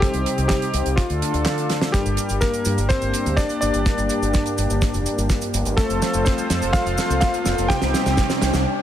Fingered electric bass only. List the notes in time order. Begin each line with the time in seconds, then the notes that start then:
0.14 C2
0.38 C2
0.74 C2
0.86 C2
1.10 D2
1.34 D2
2.06 G1
2.30 G1
2.66 G2
2.78 G1
3.02 G1
3.26 D2
3.62 G1
3.74 G1
3.98 G1
4.22 G1
4.58 G1
4.70 G1
4.94 F1
5.18 G1
5.54 G1
5.66 G1
5.90 F1
6.14 F1
6.50 F2
6.62 F1
6.86 F1
7.10 C2
7.46 F1
7.58 F1
7.82 C2
8.06 C2
8.42 C2
8.54 C2